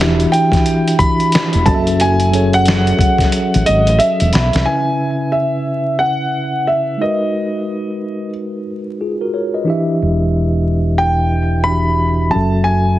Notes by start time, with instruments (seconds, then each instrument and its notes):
Already playing: fingered electric bass E1, tine electric piano E3 D4 E4 F#4 G4 E5 B5
0.01 finger snap, snare
0.20 closed hi-hat
0.32 grand piano G5, closed hi-hat
0.52 kick, snare, closed hi-hat
0.66 closed hi-hat
0.88 closed hi-hat
0.99 grand piano B5, kick, closed hi-hat
1.20 closed hi-hat
1.32 finger snap, snare, closed hi-hat
1.53 fingered electric bass E1, closed hi-hat
1.65 fingered electric bass F#1, tine electric piano F#3 C#4 F#4 A4 D#5, grand piano A5, kick, closed hi-hat
1.74 tine electric piano E5
1.87 closed hi-hat
2.00 grand piano G#5, closed hi-hat
2.20 closed hi-hat
2.32 tine electric piano F#3 C#4 G#4 A4 C#5, closed hi-hat
2.53 grand piano F#5, closed hi-hat
2.66 finger snap, snare, closed hi-hat
2.87 closed hi-hat
2.99 kick, closed hi-hat
3.18 kick, snare, closed hi-hat
3.32 closed hi-hat
3.54 fingered electric bass A1, closed hi-hat
3.66 fingered electric bass G#1, grand piano D#5, closed hi-hat
3.87 fingered electric bass A1, closed hi-hat
3.99 grand piano E5, tine electric piano E5, closed hi-hat
4.20 fingered electric bass E1, closed hi-hat
4.33 fingered electric bass B1, tine electric piano B5, snare, closed hi-hat
4.53 fingered electric bass C2, snare, closed hi-hat
4.63 tine electric piano C#3 C#4 E4, grand piano G#5
4.68 tine electric piano B4 E5
5.32 grand piano E5
5.99 grand piano F#5
6.67 grand piano E5
6.97 tine electric piano G#3 D#4 F#4
7.01 tine electric piano A#4 B4, grand piano D#5
9.01 tine electric piano F4 G#4
9.21 tine electric piano F#4 A#4
9.34 tine electric piano A#4 C#5
9.54 tine electric piano B4 D#5
9.64 tine electric piano E3 D4 E4 G4
9.70 tine electric piano E5
10.02 fingered electric bass E1
10.98 grand piano G5
11.64 tine electric piano E3 D4 F#4, grand piano B5
11.68 tine electric piano G4 E5
12.30 tine electric piano F#3 C#4 F#4, grand piano A5
12.34 fingered electric bass F#1, tine electric piano A4 E5
12.64 grand piano G#5